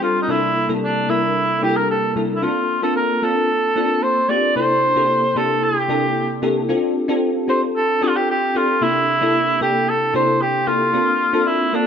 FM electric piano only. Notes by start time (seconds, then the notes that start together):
Already playing: C4 D4 F4 A4
0.00 G3 C4 D4 F4 A4
0.28 C3 G3 A#3 D4 E4 A4
0.68 C3 G3 A#3 D4 E4 A4
1.08 C3 G3 A#3 D4 E4 A#4
1.62 C3 G3 A#3 D4 E4 G4
1.69 A4
2.15 C3 G3 A#3 D4 E4 A4
2.42 A#3 C4 D4 F4 A4
2.82 A#3 C4 D4 F4 A4
3.22 A#3 C4 D4 F4 A4
3.75 A#3 C4 D4 F4 A4
4.28 A#3 C4 D4 F4 G4
4.55 C3 A#3 D4 E4 G4 A4
4.95 C3 A#3 D4 E4 G4 A4
5.35 C3 A#3 D4 E4 G4 A4
5.88 C3 A#3 D4 E4 G4 A4
6.42 C3 A#3 D4 E4 G4 A4
6.69 C4 D4 F4 G4 A4
7.08 C4 D4 F4 G4 A4
7.48 C4 D4 F4 G4 A4
8.01 C4 D4 F4 G4 A4
8.55 C4 D4 F4 G4 A4
8.81 C3 A#3 D4 E4 G4 A4
9.21 C3 A#3 D4 E4 G4 A4
9.61 C3 A#3 D4 E4 G4 A4
10.13 C3 A#3 D4 E4 G4 A4
10.66 C3 A#3 D4 E4 G4 A4
10.93 A#3 C4 D4 F4 A4
11.33 A#3 C4 D4 F4 A4
11.73 A#3 C4 D4 F4 A4